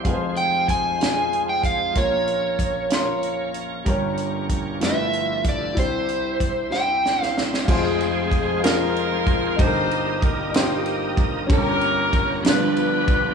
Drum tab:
CC |------------|------------|------------|------------|
RD |------------|------------|------------|------------|
HH |x-x-x-x-x-x-|x-x-x-x-x-x-|x-x-x-x-x-x-|x-x-x-------|
SD |------o-----|------o-----|------o-----|------o-oooo|
BD |o---o-----o-|o---o-------|o---o-----o-|o---o-------|

CC |x-----------|------------|------------|
RD |--x-x-x-x-x-|x-x-x-x-x-x-|x-x-x-x-x-x-|
HH |------------|------------|------------|
SD |------o-----|------o-----|------o-----|
BD |o---o-----o-|o---o-----o-|o---o-----o-|